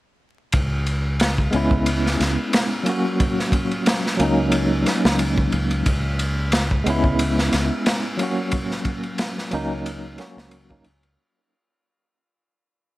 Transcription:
0.52 fingered electric bass C#2, kick, ride
0.86 ride
1.20 snare, ride
1.38 kick
1.51 fingered electric bass C#2, tine electric piano G#3 B3 C#4, ride
1.56 tine electric piano E4
1.71 kick
1.86 ride
2.06 snare
2.20 fingered electric bass C#2, snare, ride
2.53 snare, ride
2.83 tine electric piano F#3 A#3 C#4, ride
2.89 tine electric piano F#4
3.20 kick, ride
3.39 snare
3.52 kick, ride
3.71 ride
3.86 snare, ride
4.06 snare
4.17 fingered electric bass C#2, tine electric piano F#3 A#3 C#4, ride
4.23 tine electric piano D#4
4.52 ride
4.86 snare, ride
5.05 fingered electric bass C#2, snare
5.19 ride
5.38 kick
5.52 fingered electric bass C#2, ride
5.71 ride
5.86 fingered electric bass C#2, kick, ride
6.19 ride
6.52 snare, ride
6.71 kick
6.84 fingered electric bass C#2, tine electric piano G#3 B3 C#4, ride
6.90 tine electric piano E4
7.04 kick
7.19 ride
7.39 snare
7.53 fingered electric bass C#2, snare, ride
7.86 snare, ride
8.17 tine electric piano F#3 A#3 C#4, ride
8.23 tine electric piano F#4
8.51 kick, ride
8.71 snare
8.85 kick, ride
9.03 ride
9.18 snare, ride
9.38 snare
9.51 fingered electric bass C#2, tine electric piano F#3 A#3 C#4 D#4, ride
9.86 ride
10.18 tine electric piano F#3 A#3 C#4 F#4, snare, ride
10.37 fingered electric bass C#2, snare
10.51 ride
10.69 tine electric piano F#3 A#3 C#4 D#4, kick
10.84 fingered electric bass C#2, ride
11.03 ride

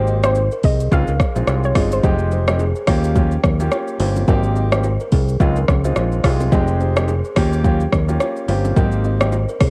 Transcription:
Already playing: fingered electric bass G#1, grand piano A#3 C4 D#4 G4
0.07 kalimba D#5, shaker
0.23 grand piano A#3 C4 D#4 G4, kalimba C5, synth pluck C5, cross-stick, shaker
0.35 shaker
0.51 kalimba A#4, shaker
0.63 fingered electric bass C2, kalimba G#4, synth pluck D#5, kick, open hi-hat, shaker
0.80 shaker
0.91 fingered electric bass C#2, grand piano G#3 C4 D#4 F4, synth pluck F5, kick, shaker
1.07 fingered electric bass C#2, kalimba A#4, shaker
1.20 kick, cross-stick, shaker
1.35 fingered electric bass A#1, grand piano G#3 C4 D#4 F4, kalimba C5, shaker
1.47 fingered electric bass C2, cross-stick, shaker
1.63 synth pluck C#5, shaker
1.75 fingered electric bass G1, grand piano G#3 C4 D#4 F4, kalimba G#4, kick, cross-stick, open hi-hat, shaker
1.92 synth pluck C5, shaker
2.03 fingered electric bass F1, grand piano G#3 C4 D#4 G4, kalimba G#4, kick, low conga, shaker
2.19 shaker
2.31 kalimba C5, low bongo, shaker
2.47 grand piano G#3 C4 D#4 G4, kalimba A#4, cross-stick, low bongo, shaker
2.59 kalimba G#4, high bongo, shaker
2.76 shaker
2.87 fingered electric bass D#2, grand piano A#3 C#4 F4 G4, kalimba G4, kick, cross-stick, open hi-hat, shaker
3.04 shaker
3.15 grand piano A#3 C#4 F4 G4, kick, low conga, shaker
3.31 shaker
3.44 fingered electric bass D#2, kalimba A#4, kick, cross-stick, low bongo, low conga, shaker
3.60 grand piano A#3 C#4 F4 G4, shaker
3.72 kalimba C#5, cross-stick, high bongo, shaker
3.88 shaker
4.00 fingered electric bass G1, grand piano A#3 C#4 F4 G4, kalimba C5, open hi-hat, high bongo, shaker
4.16 low bongo, shaker
4.28 fingered electric bass G#1, grand piano A#3 C4 D#4 G4, kalimba A#4, kick, low conga, shaker
4.43 shaker
4.56 kalimba D#5, low bongo, shaker
4.72 grand piano A#3 C4 D#4 G4, kalimba C5, cross-stick, low bongo, shaker
4.84 high bongo, shaker
5.00 kalimba A#4, shaker
5.12 fingered electric bass C2, kalimba G#4, kick, open hi-hat, shaker
5.29 shaker
5.40 fingered electric bass C#2, grand piano G#3 C4 D#4 F4, kick, low conga, shaker
5.56 kalimba A#4, shaker
5.68 fingered electric bass C#2, kick, cross-stick, low bongo, low conga, shaker
5.84 grand piano G#3 C4 D#4 F4, kalimba C5, shaker
5.96 fingered electric bass A#1, cross-stick, high bongo, shaker
6.12 shaker
6.24 fingered electric bass C2, grand piano G#3 C4 D#4 F4, kalimba G#4, kick, cross-stick, open hi-hat, high bongo, shaker
6.40 low bongo, shaker
6.52 fingered electric bass F1, grand piano G#3 C4 D#4 G4, kalimba G#4, kick, low conga, shaker
6.67 shaker
6.80 kalimba C5, low bongo, shaker
6.96 grand piano G#3 C4 D#4 G4, cross-stick, low bongo, shaker
7.08 kalimba G#4, high bongo, shaker
7.24 shaker
7.36 fingered electric bass D#2, grand piano A#3 C#4 F4 G4, kalimba G4, kick, cross-stick, open hi-hat, shaker
7.53 shaker
7.64 grand piano A#3 C#4 F4 G4, kick, low conga, shaker
7.80 shaker
7.92 fingered electric bass D#2, kalimba A#4, kick, cross-stick, low bongo, low conga, shaker
8.08 grand piano A#3 C#4 F4 G4, shaker
8.20 kalimba C#5, cross-stick, high bongo, shaker
8.36 shaker
8.48 fingered electric bass G1, grand piano A#3 C#4 F4 G4, kalimba C5, open hi-hat, high bongo, shaker
8.65 low bongo, shaker
8.76 fingered electric bass G#1, grand piano A#3 C4 D#4 G4, kalimba A#4, kick, low conga, shaker
8.92 shaker
9.04 kalimba D#5, low bongo, shaker
9.21 grand piano A#3 C4 D#4 G4, kalimba C5, cross-stick, low bongo, shaker
9.32 high bongo, shaker
9.49 kalimba A#4, shaker
9.61 fingered electric bass C2, kalimba G#4, kick, cross-stick, open hi-hat, high bongo, shaker

